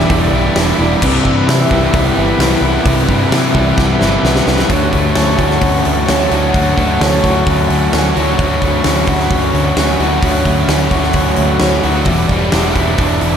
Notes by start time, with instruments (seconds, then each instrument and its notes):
Already playing: overdriven electric guitar E2 B2 E3 G3 D4 E4, distorted electric guitar E3 G3 B3 E4, accordion G4 D5 E5 B5
0.09 fingered electric bass E1, overdriven electric guitar G3 D4, kick, open hi-hat
0.32 fingered electric bass B1, overdriven electric guitar D4 E4
0.55 fingered electric bass E1, overdriven electric guitar E3 D4, snare, open hi-hat
0.78 fingered electric bass E1, overdriven electric guitar D4 E4
1.01 fingered electric bass C2, overdriven electric guitar C3, distorted electric guitar C3 G3 C4 E4, accordion B4 B5, kick, crash
1.24 fingered electric bass G2, overdriven electric guitar E3 G3, kick
1.47 fingered electric bass C3, overdriven electric guitar E3 E4, snare, open hi-hat
1.70 fingered electric bass C2, overdriven electric guitar G3 B3, distorted electric guitar G3 E4, kick
1.74 distorted electric guitar C3
1.92 fingered electric bass C2, overdriven electric guitar B3, kick, open hi-hat
1.96 overdriven electric guitar G3
2.15 fingered electric bass G1, overdriven electric guitar B3 E4
2.37 fingered electric bass C2, overdriven electric guitar E3 B3, snare, open hi-hat
2.61 fingered electric bass C2, overdriven electric guitar B3 E4
2.85 fingered electric bass C2, distorted electric guitar C3 G3 E4, overdriven electric guitar C3, kick, open hi-hat
3.07 fingered electric bass G2, overdriven electric guitar E3 G3, kick
3.30 fingered electric bass C3, overdriven electric guitar E3 E4, snare, open hi-hat
3.54 fingered electric bass C2, distorted electric guitar C3 G3 E4, overdriven electric guitar G3 B3, kick
3.77 fingered electric bass C2, overdriven electric guitar G3 B3, kick, snare
3.99 fingered electric bass G1, overdriven electric guitar B3 E4, snare
4.23 fingered electric bass C2, overdriven electric guitar E3 B3, snare
4.36 snare
4.46 fingered electric bass C2, overdriven electric guitar B3 E4, snare
4.58 snare
4.69 fingered electric bass D2, distorted electric guitar D3 F#3 A3, overdriven electric guitar D3, accordion F#4 C#5 F#5 A5, kick, open hi-hat
4.92 fingered electric bass D2, overdriven electric guitar A3, kick, open hi-hat
5.14 fingered electric bass D2, overdriven electric guitar C#4, snare, open hi-hat
5.38 fingered electric bass D2, overdriven electric guitar F#4, kick, open hi-hat
5.50 snare
5.61 fingered electric bass D2, overdriven electric guitar C#4, kick, open hi-hat
5.84 fingered electric bass D2, overdriven electric guitar D3 A3, open hi-hat
6.06 fingered electric bass D2, overdriven electric guitar C#4, snare, open hi-hat
6.29 fingered electric bass D2, distorted electric guitar F#3 A3 D4, overdriven electric guitar F#4, open hi-hat
6.34 distorted electric guitar D3
6.53 fingered electric bass D2, overdriven electric guitar D3, distorted electric guitar D3 F#3 A3, kick, open hi-hat
6.76 fingered electric bass D2, overdriven electric guitar A3, kick, open hi-hat
6.99 fingered electric bass D2, overdriven electric guitar C#4, snare, open hi-hat
7.23 fingered electric bass D2, overdriven electric guitar F#4, kick, open hi-hat
7.46 fingered electric bass D2, overdriven electric guitar C#4, kick, open hi-hat
7.68 fingered electric bass D2, overdriven electric guitar D3 A3, open hi-hat
7.93 fingered electric bass D2, overdriven electric guitar C#4, snare, open hi-hat
8.15 fingered electric bass D2, distorted electric guitar D3 F#3 A3 D4, overdriven electric guitar F#4, open hi-hat
8.39 fingered electric bass D2, distorted electric guitar D3 F#3 A3, overdriven electric guitar D3, accordion B5, kick, open hi-hat
8.61 fingered electric bass D2, overdriven electric guitar A3, kick, open hi-hat
8.84 fingered electric bass D2, overdriven electric guitar C#4, snare, open hi-hat
9.07 fingered electric bass D2, overdriven electric guitar F#4, kick, open hi-hat
9.20 snare
9.30 fingered electric bass D2, overdriven electric guitar C#4, kick, open hi-hat
9.53 fingered electric bass D2, overdriven electric guitar D3 A3, open hi-hat
9.76 fingered electric bass D2, overdriven electric guitar C#4, snare, open hi-hat
9.99 fingered electric bass D2, distorted electric guitar D3 F#3 A3 D4, overdriven electric guitar F#4, open hi-hat
10.22 fingered electric bass D2, overdriven electric guitar D3, distorted electric guitar D3 F#3 A3, kick, open hi-hat
10.45 fingered electric bass D2, overdriven electric guitar A3, kick, open hi-hat
10.68 fingered electric bass D2, overdriven electric guitar C#4, snare, open hi-hat
10.91 fingered electric bass D2, overdriven electric guitar F#4, kick, open hi-hat
11.03 snare
11.13 fingered electric bass D2, overdriven electric guitar C#4, kick, open hi-hat
11.36 fingered electric bass D2, overdriven electric guitar D3 A3, open hi-hat
11.59 fingered electric bass D2, overdriven electric guitar C#4, snare, open hi-hat
11.83 fingered electric bass D2, distorted electric guitar D3 F#3 A3 D4, overdriven electric guitar F#4, open hi-hat
12.05 fingered electric bass E1, overdriven electric guitar E2, distorted electric guitar E3 G3 B3, accordion G4 D5 E5, kick, open hi-hat
12.09 distorted electric guitar E4
12.29 fingered electric bass E1, overdriven electric guitar G3, kick, open hi-hat
12.52 fingered electric bass E1, overdriven electric guitar D4, snare, open hi-hat
12.75 fingered electric bass E1, overdriven electric guitar E4, kick, open hi-hat
12.98 fingered electric bass E1, overdriven electric guitar D4, kick, open hi-hat
13.21 fingered electric bass E1, overdriven electric guitar E3 G3, open hi-hat